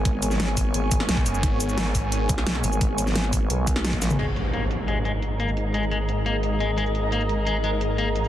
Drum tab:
CC |----------------|----------------|----------------|x---------------|
HH |x-x-x-o-x-x-x-o-|x-x-x-o-x-x-x-o-|x-x-x-o-x-x-x-o-|x-x-x-x-x-x-x-x-|
SH |--xx--x---x---xx|--xx--x---x---xx|--xx--x---x---xx|--xx--x---x---xx|
SD |---ooo-----oo---|----o------ooo--|---ooo-----oo-o-|----------------|
T2 |----------------|----------------|---------------o|----------------|
BD |o-----o---o--o--|o-----o---o-----|o-----o---o--o--|----------------|

CC |----------------|----------------|
HH |x-x-x-x-x-x-x-x-|x-x-x-x-x-x-x-x-|
SH |--xx--x---x---xx|--xx--x---x---xx|
SD |----------------|----------------|
T2 |----------------|----------------|
BD |----------------|----------------|